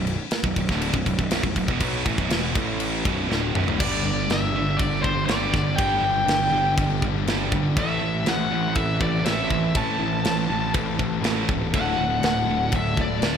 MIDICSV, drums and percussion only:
0, 0, Header, 1, 2, 480
1, 0, Start_track
1, 0, Tempo, 496278
1, 1754, Time_signature, 4, 2, 24, 8
1, 12931, End_track
2, 0, Start_track
2, 0, Title_t, "Drums"
2, 66, Note_on_c, 9, 49, 60
2, 163, Note_off_c, 9, 49, 0
2, 298, Note_on_c, 9, 49, 73
2, 308, Note_on_c, 9, 38, 119
2, 395, Note_off_c, 9, 49, 0
2, 404, Note_off_c, 9, 38, 0
2, 423, Note_on_c, 9, 36, 107
2, 520, Note_off_c, 9, 36, 0
2, 545, Note_on_c, 9, 36, 88
2, 545, Note_on_c, 9, 49, 63
2, 642, Note_off_c, 9, 36, 0
2, 642, Note_off_c, 9, 49, 0
2, 666, Note_on_c, 9, 36, 88
2, 684, Note_on_c, 9, 38, 34
2, 763, Note_off_c, 9, 36, 0
2, 780, Note_off_c, 9, 38, 0
2, 789, Note_on_c, 9, 49, 74
2, 886, Note_off_c, 9, 49, 0
2, 906, Note_on_c, 9, 36, 89
2, 1003, Note_off_c, 9, 36, 0
2, 1027, Note_on_c, 9, 36, 83
2, 1033, Note_on_c, 9, 49, 56
2, 1124, Note_off_c, 9, 36, 0
2, 1130, Note_off_c, 9, 49, 0
2, 1148, Note_on_c, 9, 36, 85
2, 1245, Note_off_c, 9, 36, 0
2, 1264, Note_on_c, 9, 49, 83
2, 1274, Note_on_c, 9, 38, 116
2, 1361, Note_off_c, 9, 49, 0
2, 1371, Note_off_c, 9, 38, 0
2, 1387, Note_on_c, 9, 36, 93
2, 1484, Note_off_c, 9, 36, 0
2, 1509, Note_on_c, 9, 36, 86
2, 1513, Note_on_c, 9, 49, 66
2, 1606, Note_off_c, 9, 36, 0
2, 1610, Note_off_c, 9, 49, 0
2, 1628, Note_on_c, 9, 36, 90
2, 1725, Note_off_c, 9, 36, 0
2, 1744, Note_on_c, 9, 49, 90
2, 1748, Note_on_c, 9, 36, 101
2, 1841, Note_off_c, 9, 49, 0
2, 1844, Note_off_c, 9, 36, 0
2, 1990, Note_on_c, 9, 36, 105
2, 1992, Note_on_c, 9, 49, 62
2, 2087, Note_off_c, 9, 36, 0
2, 2089, Note_off_c, 9, 49, 0
2, 2110, Note_on_c, 9, 36, 89
2, 2207, Note_off_c, 9, 36, 0
2, 2228, Note_on_c, 9, 49, 86
2, 2238, Note_on_c, 9, 38, 113
2, 2325, Note_off_c, 9, 49, 0
2, 2335, Note_off_c, 9, 38, 0
2, 2470, Note_on_c, 9, 49, 68
2, 2471, Note_on_c, 9, 36, 109
2, 2567, Note_off_c, 9, 49, 0
2, 2568, Note_off_c, 9, 36, 0
2, 2707, Note_on_c, 9, 49, 84
2, 2804, Note_off_c, 9, 49, 0
2, 2953, Note_on_c, 9, 36, 102
2, 2956, Note_on_c, 9, 49, 60
2, 3050, Note_off_c, 9, 36, 0
2, 3053, Note_off_c, 9, 49, 0
2, 3208, Note_on_c, 9, 38, 64
2, 3305, Note_off_c, 9, 38, 0
2, 3436, Note_on_c, 9, 45, 92
2, 3533, Note_off_c, 9, 45, 0
2, 3559, Note_on_c, 9, 43, 90
2, 3656, Note_off_c, 9, 43, 0
2, 3676, Note_on_c, 9, 49, 62
2, 3676, Note_on_c, 9, 57, 119
2, 3677, Note_on_c, 9, 36, 120
2, 3773, Note_off_c, 9, 49, 0
2, 3773, Note_off_c, 9, 57, 0
2, 3774, Note_off_c, 9, 36, 0
2, 4157, Note_on_c, 9, 49, 58
2, 4167, Note_on_c, 9, 38, 120
2, 4254, Note_off_c, 9, 49, 0
2, 4264, Note_off_c, 9, 38, 0
2, 4637, Note_on_c, 9, 36, 114
2, 4638, Note_on_c, 9, 49, 63
2, 4734, Note_off_c, 9, 36, 0
2, 4735, Note_off_c, 9, 49, 0
2, 4877, Note_on_c, 9, 36, 80
2, 4974, Note_off_c, 9, 36, 0
2, 5112, Note_on_c, 9, 49, 66
2, 5122, Note_on_c, 9, 38, 114
2, 5209, Note_off_c, 9, 49, 0
2, 5218, Note_off_c, 9, 38, 0
2, 5355, Note_on_c, 9, 36, 90
2, 5368, Note_on_c, 9, 38, 34
2, 5452, Note_off_c, 9, 36, 0
2, 5465, Note_off_c, 9, 38, 0
2, 5595, Note_on_c, 9, 36, 125
2, 5596, Note_on_c, 9, 49, 66
2, 5692, Note_off_c, 9, 36, 0
2, 5693, Note_off_c, 9, 49, 0
2, 6076, Note_on_c, 9, 49, 67
2, 6086, Note_on_c, 9, 38, 109
2, 6173, Note_off_c, 9, 49, 0
2, 6183, Note_off_c, 9, 38, 0
2, 6554, Note_on_c, 9, 36, 115
2, 6558, Note_on_c, 9, 49, 64
2, 6651, Note_off_c, 9, 36, 0
2, 6655, Note_off_c, 9, 49, 0
2, 6793, Note_on_c, 9, 36, 77
2, 6889, Note_off_c, 9, 36, 0
2, 7037, Note_on_c, 9, 49, 62
2, 7046, Note_on_c, 9, 38, 109
2, 7133, Note_off_c, 9, 49, 0
2, 7143, Note_off_c, 9, 38, 0
2, 7274, Note_on_c, 9, 36, 91
2, 7370, Note_off_c, 9, 36, 0
2, 7513, Note_on_c, 9, 36, 118
2, 7513, Note_on_c, 9, 49, 67
2, 7609, Note_off_c, 9, 49, 0
2, 7610, Note_off_c, 9, 36, 0
2, 7990, Note_on_c, 9, 49, 60
2, 8000, Note_on_c, 9, 38, 120
2, 8087, Note_off_c, 9, 49, 0
2, 8096, Note_off_c, 9, 38, 0
2, 8465, Note_on_c, 9, 49, 57
2, 8470, Note_on_c, 9, 36, 118
2, 8562, Note_off_c, 9, 49, 0
2, 8567, Note_off_c, 9, 36, 0
2, 8711, Note_on_c, 9, 36, 83
2, 8808, Note_off_c, 9, 36, 0
2, 8952, Note_on_c, 9, 49, 62
2, 8961, Note_on_c, 9, 38, 118
2, 9049, Note_off_c, 9, 49, 0
2, 9058, Note_off_c, 9, 38, 0
2, 9193, Note_on_c, 9, 36, 84
2, 9290, Note_off_c, 9, 36, 0
2, 9427, Note_on_c, 9, 49, 64
2, 9431, Note_on_c, 9, 36, 122
2, 9524, Note_off_c, 9, 49, 0
2, 9528, Note_off_c, 9, 36, 0
2, 9910, Note_on_c, 9, 49, 66
2, 9920, Note_on_c, 9, 38, 114
2, 10007, Note_off_c, 9, 49, 0
2, 10017, Note_off_c, 9, 38, 0
2, 10388, Note_on_c, 9, 49, 66
2, 10393, Note_on_c, 9, 36, 112
2, 10485, Note_off_c, 9, 49, 0
2, 10489, Note_off_c, 9, 36, 0
2, 10633, Note_on_c, 9, 36, 77
2, 10730, Note_off_c, 9, 36, 0
2, 10872, Note_on_c, 9, 49, 66
2, 10881, Note_on_c, 9, 38, 118
2, 10968, Note_off_c, 9, 49, 0
2, 10978, Note_off_c, 9, 38, 0
2, 11112, Note_on_c, 9, 36, 90
2, 11208, Note_off_c, 9, 36, 0
2, 11353, Note_on_c, 9, 36, 113
2, 11353, Note_on_c, 9, 49, 66
2, 11450, Note_off_c, 9, 36, 0
2, 11450, Note_off_c, 9, 49, 0
2, 11829, Note_on_c, 9, 49, 57
2, 11839, Note_on_c, 9, 38, 113
2, 11926, Note_off_c, 9, 49, 0
2, 11936, Note_off_c, 9, 38, 0
2, 12301, Note_on_c, 9, 49, 63
2, 12309, Note_on_c, 9, 36, 112
2, 12398, Note_off_c, 9, 49, 0
2, 12406, Note_off_c, 9, 36, 0
2, 12548, Note_on_c, 9, 36, 83
2, 12645, Note_off_c, 9, 36, 0
2, 12786, Note_on_c, 9, 49, 61
2, 12796, Note_on_c, 9, 38, 109
2, 12883, Note_off_c, 9, 49, 0
2, 12892, Note_off_c, 9, 38, 0
2, 12931, End_track
0, 0, End_of_file